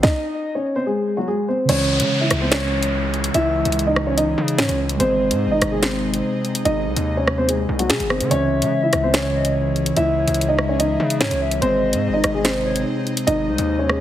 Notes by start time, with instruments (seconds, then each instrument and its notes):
0.03 grand piano D#4 D#5, kick, snare
0.55 grand piano C#4 C#5
0.76 grand piano C4 C5
0.86 grand piano G#3 G#4
1.17 grand piano F#3 F#4
1.28 grand piano G#3 G#4
1.48 grand piano C4 C5
1.65 808-style bass C#2, tine electric piano C#3 G#3, analog synth pad C#3, closed hi-hat, crash, downlifter
1.69 analog synth pad E3 G#3, tine electric piano E3 C#5, grand piano C#4 C#5
2.00 808-style bass C#3, closed hi-hat
2.21 grand piano E4 E5
2.31 808-style bass C#2, cross-stick, closed hi-hat
2.41 grand piano C4 C5
2.52 grand piano C#4 C#5, finger snap, snare, closed hi-hat
2.83 closed hi-hat
3.14 closed hi-hat
3.24 closed hi-hat
3.34 808-style bass C#2, grand piano E4 E5, closed hi-hat
3.65 808-style bass C#2, closed hi-hat
3.72 closed hi-hat
3.79 closed hi-hat
3.87 grand piano D#4 D#5
3.96 cross-stick
4.07 grand piano C#4 C#5
4.17 grand piano D#4 D#5, closed hi-hat
4.38 808-style bass C#3
4.48 closed hi-hat
4.58 808-style bass G#2, grand piano C#4 C#5, finger snap, snare
4.69 808-style bass C#2, closed hi-hat
4.89 closed hi-hat
4.96 808-style bass G#1, analog synth pad C3 D#4, tine electric piano G#3 G#4, grand piano C5, closed hi-hat
5.01 grand piano C4, tine electric piano C5 D#5
5.31 808-style bass G#2, closed hi-hat
5.46 808-style bass G#1
5.51 grand piano D#4 D#5
5.62 808-style bass G#1, cross-stick, closed hi-hat
5.72 grand piano G#3 G#4
5.82 grand piano C4 C5, finger snap, snare, closed hi-hat
6.14 closed hi-hat
6.45 closed hi-hat
6.55 closed hi-hat
6.65 808-style bass G#1, grand piano D#4 D#5, closed hi-hat
6.86 808-style bass C2
6.96 808-style bass D#2, closed hi-hat
7.17 grand piano C#4 C#5
7.28 cross-stick
7.38 grand piano C4 C5
7.48 grand piano G#3 G#4, closed hi-hat
7.69 808-style bass C2
7.79 grand piano F#3 F#4, closed hi-hat
7.90 808-style bass C3, grand piano G#3 G#4, finger snap, snare
8.00 808-style bass G#1, closed hi-hat
8.10 grand piano C4 C5, cross-stick
8.21 808-style bass D#3, closed hi-hat
8.27 808-style bass C#2, tine electric piano C#3 G#3, analog synth pad C#3 E3 G#3, grand piano C#5, soft synth lead E5, closed hi-hat
8.32 tine electric piano E3 C#5, grand piano C#4
8.62 808-style bass C#3, closed hi-hat
8.83 grand piano E4 E5
8.93 808-style bass C#2, cross-stick, closed hi-hat
9.03 grand piano C4 C5
9.14 grand piano C#4 C#5, finger snap, snare, closed hi-hat
9.35 soft synth lead D#5
9.45 closed hi-hat
9.76 closed hi-hat
9.86 closed hi-hat
9.96 808-style bass C#2, grand piano E4 E5, closed hi-hat
10.17 soft synth lead C#5
10.28 808-style bass C#2, closed hi-hat
10.34 closed hi-hat
10.41 closed hi-hat
10.48 grand piano D#4 D#5
10.59 soft synth lead E5, cross-stick
10.69 grand piano C#4 C#5
10.79 grand piano D#4 D#5, closed hi-hat
11.00 808-style bass C#3
11.10 closed hi-hat
11.21 808-style bass G#2, grand piano C#4 C#5, soft synth lead C#5, finger snap, snare
11.31 808-style bass C#2, closed hi-hat
11.41 soft synth lead E5
11.51 closed hi-hat
11.59 808-style bass G#1, analog synth pad C3 D#4, tine electric piano G#3 G#4, grand piano C4 C5, soft synth lead D#5, closed hi-hat
11.64 tine electric piano C5 D#5
11.93 808-style bass G#2, closed hi-hat
12.08 808-style bass G#1
12.13 grand piano D#4 D#5
12.24 808-style bass G#1, cross-stick, closed hi-hat
12.34 grand piano G#3 G#4
12.45 grand piano C4 C5, finger snap, snare, closed hi-hat
12.65 soft synth lead C#5
12.76 closed hi-hat
13.07 closed hi-hat
13.17 closed hi-hat
13.27 808-style bass G#1, grand piano D#4 D#5, closed hi-hat
13.48 808-style bass C2, soft synth lead C5
13.58 808-style bass D#2, closed hi-hat
13.79 grand piano C#4 C#5
13.89 soft synth lead G#4, cross-stick